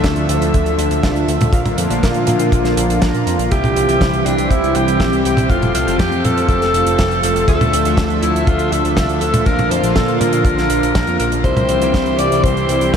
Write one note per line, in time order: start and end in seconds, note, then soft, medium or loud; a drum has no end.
0.00 0.15 D2 loud
0.00 1.51 D3 medium
0.00 1.51 F3 medium
0.00 1.49 A3 medium
0.00 1.01 D4 medium
0.00 1.01 F4 medium
0.00 1.00 A4 medium
0.00 1.01 E5 loud
0.00 1.51 E5 medium
0.00 kick medium
0.00 closed hi-hat medium
0.04 snare loud
0.16 0.27 D2 medium
0.16 closed hi-hat soft
0.29 0.40 D2 medium
0.29 closed hi-hat loud
0.41 0.52 D2 medium
0.41 closed hi-hat medium
0.54 0.65 D2 loud
0.54 kick loud
0.54 closed hi-hat medium
0.66 0.77 D2 medium
0.66 closed hi-hat soft
0.78 0.89 D2 medium
0.78 closed hi-hat loud
0.91 1.02 D2 medium
0.91 closed hi-hat medium
1.03 1.14 C2 loud
1.03 1.50 D4 medium
1.03 1.50 F4 medium
1.03 1.50 A4 medium
1.03 1.50 E5 loud
1.03 kick medium
1.03 snare loud
1.03 closed hi-hat medium
1.16 1.26 D2 medium
1.16 closed hi-hat soft
1.28 1.39 D2 loud
1.28 closed hi-hat medium
1.41 1.51 D2 medium
1.41 closed hi-hat medium
1.41 high tom medium
1.53 1.64 A#1 loud
1.53 3.50 D3 medium
1.53 3.50 F3 medium
1.53 3.49 A#3 medium
1.53 1.87 D4 medium
1.53 1.87 F4 medium
1.53 3.50 F4 medium
1.53 1.87 A#4 medium
1.53 1.87 F5 medium
1.53 kick loud
1.53 closed hi-hat medium
1.66 1.76 A#1 medium
1.66 closed hi-hat soft
1.66 high tom medium
1.78 1.88 F2 medium
1.78 closed hi-hat loud
1.90 2.01 A#1 medium
1.90 2.99 D4 medium
1.90 2.99 F4 medium
1.90 2.99 A#4 medium
1.90 2.99 F5 medium
1.90 closed hi-hat medium
2.03 2.14 A#2 loud
2.03 kick medium
2.03 snare loud
2.03 closed hi-hat medium
2.14 2.26 A#2 medium
2.14 closed hi-hat soft
2.27 2.38 A#2 medium
2.27 closed hi-hat loud
2.27 high tom medium
2.39 2.50 A#2 medium
2.39 closed hi-hat medium
2.52 2.63 A#1 loud
2.52 kick loud
2.52 closed hi-hat medium
2.64 2.75 A#1 medium
2.64 snare soft
2.64 closed hi-hat soft
2.77 2.88 A#1 loud
2.77 closed hi-hat loud
2.89 3.00 A#1 medium
2.89 closed hi-hat medium
3.02 3.13 A#1 loud
3.02 3.48 D4 medium
3.02 3.48 F4 medium
3.02 3.48 A#4 medium
3.02 3.48 A#5 medium
3.02 kick medium
3.02 snare loud
3.02 closed hi-hat medium
3.14 3.25 A#2 medium
3.14 closed hi-hat soft
3.26 3.37 F2 loud
3.26 closed hi-hat medium
3.39 3.50 A#1 medium
3.39 closed hi-hat medium
3.51 3.62 C2 loud
3.51 5.48 E3 medium
3.51 5.48 G3 medium
3.51 3.86 C4 medium
3.51 7.44 C4 medium
3.51 3.86 E4 medium
3.51 5.48 G4 medium
3.51 3.86 G4 medium
3.51 4.27 G4 loud
3.51 3.86 E5 loud
3.51 kick loud
3.51 closed hi-hat medium
3.64 3.74 C2 medium
3.64 closed hi-hat soft
3.64 high tom medium
3.76 3.87 C2 medium
3.76 closed hi-hat loud
3.89 3.99 C2 medium
3.89 4.97 C4 loud
3.89 4.97 E4 medium
3.89 4.97 G4 medium
3.89 4.97 E5 loud
3.89 closed hi-hat medium
4.01 4.12 C2 loud
4.01 kick loud
4.01 snare loud
4.01 closed hi-hat medium
4.13 4.24 C2 medium
4.13 closed hi-hat soft
4.26 4.36 C2 medium
4.26 4.52 D4 medium
4.26 closed hi-hat medium
4.38 4.49 C2 medium
4.38 closed hi-hat medium
4.50 4.61 C2 loud
4.50 4.77 E4 medium
4.50 kick loud
4.50 closed hi-hat medium
4.63 4.74 C2 medium
4.63 closed hi-hat soft
4.75 4.86 C2 medium
4.75 5.25 G4 loud
4.75 closed hi-hat loud
4.88 4.99 C2 medium
4.88 closed hi-hat medium
5.00 5.11 A#1 loud
5.00 5.47 C4 medium
5.00 5.47 E4 medium
5.00 5.47 G4 medium
5.00 5.47 E5 medium
5.00 kick loud
5.00 snare loud
5.00 closed hi-hat medium
5.13 5.23 C2 medium
5.13 closed hi-hat soft
5.25 5.36 C2 loud
5.25 5.51 G4 medium
5.25 closed hi-hat medium
5.37 5.48 C2 medium
5.37 closed hi-hat medium
5.37 high tom medium
5.50 5.60 F1 loud
5.50 11.41 F3 medium
5.50 9.43 A3 medium
5.50 5.84 C4 medium
5.50 5.84 F4 medium
5.50 5.74 F4 loud
5.50 5.84 A4 medium
5.50 7.46 A4 medium
5.50 5.84 F5 medium
5.50 kick loud
5.50 closed hi-hat medium
5.62 5.73 F1 medium
5.62 closed hi-hat soft
5.62 high tom medium
5.75 5.85 C2 medium
5.75 5.98 F4 medium
5.75 closed hi-hat loud
5.87 5.98 F1 medium
5.87 7.45 C4 medium
5.87 7.45 F4 medium
5.87 7.45 A4 medium
5.87 7.45 F5 medium
5.87 closed hi-hat medium
5.99 6.10 F2 loud
5.99 6.26 G4 loud
5.99 kick loud
5.99 snare loud
5.99 closed hi-hat medium
6.12 6.22 F2 medium
6.12 closed hi-hat soft
6.24 6.35 F2 medium
6.24 6.48 A4 loud
6.24 closed hi-hat medium
6.24 high tom medium
6.37 6.47 F2 medium
6.37 closed hi-hat medium
6.49 6.59 F1 loud
6.49 7.19 A4 loud
6.49 kick loud
6.49 closed hi-hat medium
6.61 6.72 F1 medium
6.61 snare soft
6.61 closed hi-hat soft
6.74 6.84 F1 medium
6.74 closed hi-hat loud
6.86 6.97 F1 medium
6.86 closed hi-hat medium
6.99 7.09 F1 loud
6.99 kick loud
6.99 snare loud
6.99 closed hi-hat medium
7.11 7.22 F1 medium
7.11 closed hi-hat soft
7.23 7.34 F1 medium
7.23 7.46 A4 loud
7.23 closed hi-hat loud
7.36 7.46 F1 medium
7.36 closed hi-hat medium
7.48 7.59 D2 loud
7.48 11.41 D3 medium
7.48 7.82 D4 medium
7.48 7.82 F4 medium
7.48 7.92 A4 loud
7.48 7.82 A4 medium
7.48 7.82 E5 medium
7.48 9.45 E5 medium
7.48 kick loud
7.48 closed hi-hat medium
7.61 7.71 D2 medium
7.61 closed hi-hat soft
7.61 high tom medium
7.73 7.84 D2 loud
7.73 closed hi-hat loud
7.85 7.96 D2 medium
7.85 8.94 D4 loud
7.85 8.94 F4 medium
7.85 8.94 A4 medium
7.85 8.94 E5 loud
7.85 closed hi-hat medium
7.97 8.08 D2 loud
7.97 kick loud
7.97 snare loud
7.97 closed hi-hat medium
8.10 8.21 D2 medium
8.10 closed hi-hat soft
8.22 8.33 D2 medium
8.22 8.48 E4 medium
8.22 closed hi-hat medium
8.35 8.46 D2 medium
8.35 closed hi-hat medium
8.47 8.58 D2 loud
8.47 8.73 F4 medium
8.47 kick loud
8.47 closed hi-hat medium
8.59 8.70 D2 medium
8.59 closed hi-hat soft
8.71 8.83 D2 medium
8.71 9.20 A4 medium
8.71 closed hi-hat loud
8.85 8.95 D2 medium
8.85 closed hi-hat medium
8.97 9.08 C2 loud
8.97 9.43 D4 medium
8.97 9.43 F4 medium
8.97 9.43 A4 medium
8.97 9.43 E5 medium
8.97 kick medium
8.97 snare loud
8.97 closed hi-hat medium
9.09 9.20 D2 medium
9.09 closed hi-hat soft
9.21 9.32 D2 medium
9.21 9.48 A4 medium
9.21 closed hi-hat medium
9.34 9.45 D2 medium
9.34 closed hi-hat medium
9.34 high tom medium
9.46 9.57 A#1 loud
9.46 11.43 A#3 medium
9.46 9.81 D4 medium
9.46 11.43 F4 medium
9.46 9.81 F4 medium
9.46 9.72 A#4 loud
9.46 9.81 A#4 medium
9.46 9.81 F5 medium
9.46 kick loud
9.46 closed hi-hat medium
9.58 9.69 A#1 medium
9.58 closed hi-hat soft
9.58 high tom medium
9.71 9.82 F2 loud
9.71 9.95 C5 medium
9.71 closed hi-hat loud
9.83 9.94 A#1 medium
9.83 10.93 D4 medium
9.83 10.93 F4 medium
9.83 10.93 A#4 medium
9.83 10.93 F5 medium
9.83 closed hi-hat medium
9.95 10.07 A#2 loud
9.95 10.22 A4 medium
9.95 kick loud
9.95 snare loud
9.95 closed hi-hat medium
10.08 10.19 A#2 medium
10.08 closed hi-hat soft
10.20 10.31 A#2 medium
10.20 10.44 A#4 medium
10.20 closed hi-hat medium
10.20 high tom medium
10.33 10.44 A#2 medium
10.33 closed hi-hat medium
10.45 10.56 A#1 loud
10.45 11.16 A#4 loud
10.45 kick loud
10.45 closed hi-hat medium
10.57 10.68 A#1 medium
10.57 snare soft
10.57 closed hi-hat soft
10.70 10.81 A#1 loud
10.70 closed hi-hat loud
10.82 10.93 A#1 medium
10.82 closed hi-hat medium
10.95 11.06 A#1 loud
10.95 11.42 D4 medium
10.95 11.42 F4 medium
10.95 11.42 A#4 medium
10.95 11.42 A#5 loud
10.95 kick loud
10.95 snare loud
10.95 closed hi-hat medium
11.07 11.18 F2 medium
11.07 closed hi-hat soft
11.19 11.31 A#1 loud
11.19 11.31 A#4 medium
11.19 closed hi-hat medium
11.32 11.43 A#1 medium
11.32 closed hi-hat medium
11.44 11.55 C2 loud
11.44 12.97 E3 medium
11.44 12.97 G3 medium
11.44 12.97 C4 medium
11.44 11.79 C4 medium
11.44 11.79 E4 medium
11.44 12.97 G4 medium
11.44 11.79 G4 medium
11.44 12.21 C5 loud
11.44 11.79 E5 medium
11.44 kick loud
11.44 closed hi-hat medium
11.57 11.68 C2 medium
11.57 closed hi-hat soft
11.57 high tom medium
11.69 11.80 C2 loud
11.69 closed hi-hat loud
11.82 11.92 C2 medium
11.82 12.91 C4 medium
11.82 12.91 E4 medium
11.82 12.91 G4 medium
11.82 12.91 E5 loud
11.82 closed hi-hat medium
11.94 12.05 C2 loud
11.94 kick loud
11.94 snare loud
11.94 closed hi-hat medium
12.06 12.17 C2 medium
12.06 closed hi-hat soft
12.19 12.30 C2 medium
12.19 12.45 D5 loud
12.19 closed hi-hat loud
12.31 12.42 C2 medium
12.31 closed hi-hat medium
12.44 12.55 C2 loud
12.44 12.95 C5 loud
12.44 kick loud
12.44 closed hi-hat medium
12.56 12.67 C2 medium
12.56 closed hi-hat soft
12.69 12.79 C2 medium
12.69 closed hi-hat medium
12.81 12.92 C2 medium
12.81 closed hi-hat medium
12.94 12.97 A#1 loud
12.94 12.97 A4 loud
12.94 kick medium
12.94 snare loud